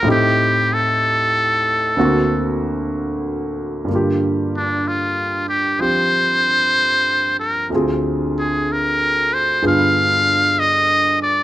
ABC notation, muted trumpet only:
X:1
M:4/4
L:1/8
Q:"Swing" 1/4=63
K:Gphr
V:1 name="Muted trumpet"
G =A4 z3 | z D F G c3 B | z A B c f2 e d |]